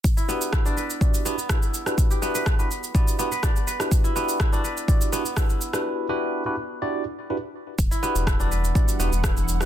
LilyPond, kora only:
\new Staff \with { instrumentName = "Kora" } { \time 4/4 \key e \minor \tempo 4 = 124 r16 e'16 b16 r16 e'16 d'16 b'16 r8. b16 r16 e'16 r8. | r16 g'16 b16 b'16 r16 b'16 r8 b16 r16 b16 b'16 d''16 r16 b'16 r16 | r16 e'16 b16 r16 e'16 d'16 b'16 r8. b16 r16 e'16 r8. | r1 |
r16 e'16 b16 r16 e'16 d'16 b'16 r8. b16 r16 e'16 r8. | }